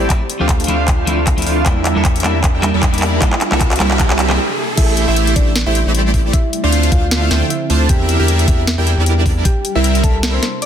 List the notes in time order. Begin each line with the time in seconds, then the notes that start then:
Already playing: A3, riser
0.09 D3 F3 A3 C4 E4 F4, kick, clap, closed hi-hat
0.30 closed hi-hat
0.39 D2 F3 A3 C4 D4 F4 G4 C5 F5
0.49 kick, clap, closed hi-hat
0.60 closed hi-hat
0.64 F3 A3, closed hi-hat
0.68 D2 A3 C4 D4 E4 F4 C5 F5, closed hi-hat
0.88 kick, clap, closed hi-hat
1.06 F3 A3 C4 E4, closed hi-hat
1.27 kick, clap, closed hi-hat
1.37 F3 A3 C4 E4, closed hi-hat
1.42 closed hi-hat
1.46 D2 A3 D4 F4 C5 F5, open hi-hat
1.65 E2 G3 A#3 D4 E4 A#4, kick, clap, closed hi-hat
1.85 clap, closed hi-hat
1.95 E2 G3 A#3 D4 E4 A4 A#4 E5
2.05 kick, clap, closed hi-hat
2.16 closed hi-hat
2.20 G3 A#3, closed hi-hat
2.24 E2 G3 D4 E4 A#4 E5, clap, closed hi-hat
2.44 kick, clap, closed hi-hat
2.55 E2 G3 D4 E4 A#4 G5
2.62 G3 A#3 D4 E4, clap, closed hi-hat
2.74 E2 G3 D4 E4 A#4 D5
2.83 kick, clap, closed hi-hat
2.93 G3 A#3 D4 E4, closed hi-hat
2.98 closed hi-hat
3.02 clap, open hi-hat
3.21 C3 G3 A#3 D4 E4, kick, clap, closed hi-hat
3.33 clap
3.41 clap, closed hi-hat
3.51 C2 G3 A#3 C4 D4 E4 A4 A#4 E5, clap
3.61 kick, clap, closed hi-hat
3.71 clap, closed hi-hat
3.76 G3, closed hi-hat
3.80 C2 G3 A#3 C4 D4 E4 A#4 E5, clap, closed hi-hat
3.91 clap
3.99 kick, clap, closed hi-hat
4.10 clap
4.19 clap, closed hi-hat
4.29 G3 A#3 D4 G4, clap
4.77 A1 G3 A3 C4 E4 G4 C5 E5, kick, closed hi-hat, crash
4.97 closed hi-hat
5.08 A1 A3 E4 G4 C5 E5
5.17 closed hi-hat
5.27 closed hi-hat
5.36 A1 D4 D5, kick, closed hi-hat
5.56 snare, closed hi-hat
5.66 A1 A3 E4 G4 C5 E5 G5
5.75 closed hi-hat
5.86 A1 A3 E4 G4 C5 D5
5.95 closed hi-hat
6.14 kick, open hi-hat
6.33 D3 F3 E4 E5, kick, closed hi-hat
6.53 closed hi-hat
6.64 D2 A3 D4 F4 C5 D5 F5
6.72 closed hi-hat
6.83 closed hi-hat
6.92 D2 A3 D4 F4 C5 F5, kick, closed hi-hat
7.11 snare, closed hi-hat
7.22 E4 E5
7.31 D2 A3 D4 F4 C5 G5, snare, closed hi-hat
7.50 E4 E5, closed hi-hat
7.70 D2 A3 D4 F4 C5 A5, open hi-hat
7.89 E2 G3 D4 E4 G4 A#4 E5 G5, kick, closed hi-hat
8.09 closed hi-hat
8.20 E2 G3 D4 E4 G4 A#4 E5 G5
8.28 closed hi-hat
8.39 closed hi-hat
8.48 E2 G3 E4 A#4 E5, kick, closed hi-hat
8.67 snare, closed hi-hat
8.78 E2 G3 D4 E4 G4 A#4 G5
8.87 closed hi-hat
8.98 E2 G3 D4 E4 A#4 D5
9.06 closed hi-hat
9.26 kick, open hi-hat
9.45 C3 A#3 E4 G4 G5, kick, closed hi-hat
9.65 closed hi-hat
9.75 C2 G3 C4 E4 A#4 E5
9.84 closed hi-hat
9.95 closed hi-hat
10.03 C2 G3 C4 E4 A4 A#4 E5 A5, kick, closed hi-hat
10.23 snare, closed hi-hat
10.34 C5 C6
10.43 snare, closed hi-hat
10.62 D5 D6, closed hi-hat